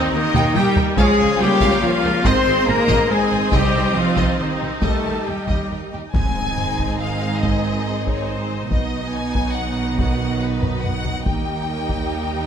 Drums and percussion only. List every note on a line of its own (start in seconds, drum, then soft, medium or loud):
0.34 taiko mid medium
0.56 taiko mid medium
0.76 taiko low loud
0.97 taiko loud
1.61 taiko medium
2.25 taiko medium
2.88 taiko medium
3.52 taiko loud
4.17 taiko medium
4.82 taiko loud
5.48 taiko medium
6.14 taiko loud
6.57 taiko low-mid medium
6.79 taiko medium
7.43 taiko medium
8.07 taiko medium
8.71 taiko medium
9.35 taiko medium
9.99 taiko medium
10.63 taiko low-mid medium
10.84 taiko low-mid medium
11.05 taiko low medium
11.26 taiko medium
11.89 taiko medium